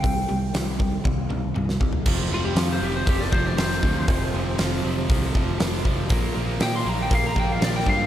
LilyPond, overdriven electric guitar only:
\new Staff \with { instrumentName = "Overdriven electric guitar" } { \clef bass \time 4/4 \key f \mixolydian \tempo 4 = 119 <c g>8 <c g>8 <c g>8 <c g>8 <c g>8 <c g>8 <c g>8 <c g>8 | <f, c f>8 <f, c f>8 <f, c f>8 <f, c f>8 <f, c f>8 <f, c f>8 <f, c f>8 <f, c f>8 | <f, c f>8 <f, c f>8 <f, c f>8 <f, c f>8 <f, c f>8 <f, c f>8 <f, c f>8 <f, c f>8 | <bes, f bes>8 <bes, f bes>8 <bes, f bes>8 <bes, f bes>8 <bes, f bes>8 <bes, f bes>8 <bes, f bes>8 <bes, f bes>8 | }